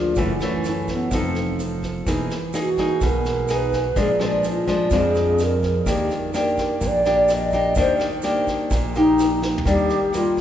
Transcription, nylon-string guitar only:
Already playing: D3 F3 A#3 D4
0.17 F#2 E3 A3 C#4
0.42 E3 A3 C#4
1.12 F3 D#4 A4
2.07 E3 A#3 D#4 G#4
2.54 A#3 D#4 G#4
2.78 A#3 D#4 G#4
3.02 B2
3.50 D#4 G#4
3.96 A#2 F3 G#3 D4
4.20 F3 G#3 D4
4.67 F3 G#3 D4
4.92 F2 F3 G#3 D4
5.86 D#3 A#3 D4 G4
6.34 A#3 D4 G4
6.81 A#2
7.06 A#3 D4 G4
7.53 A#3 D4 G4
7.77 D#3 A#3 D4 G4
8.24 A#3 D4 G4
8.71 A#2
8.96 A#3 G4
9.66 D#3 G3 A#3 D4
10.14 G3 A#3

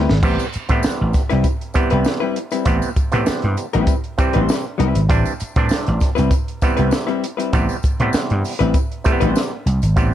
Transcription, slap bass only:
0.10 G#1
0.23 A1
0.56 muted slap bass stroke
0.70 A2
0.86 muted slap bass stroke
1.01 A1
1.32 C2
1.75 muted slap bass stroke
1.92 C2
2.67 A1
2.97 muted slap bass stroke
3.13 A2
3.28 muted slap bass stroke
3.44 G2
3.75 A1
4.19 muted slap bass stroke
4.36 A1
4.80 C2
4.95 G#1
5.10 A1
5.42 muted slap bass stroke
5.56 A2
5.71 muted slap bass stroke
5.88 A1
6.18 C2
6.62 muted slap bass stroke
6.79 C2
7.54 A1
7.84 muted slap bass stroke
8.00 A2
8.14 muted slap bass stroke
8.31 G2
8.60 A1
9.06 muted slap bass stroke
9.22 A1
9.66 C2
9.83 G#1
9.97 A1

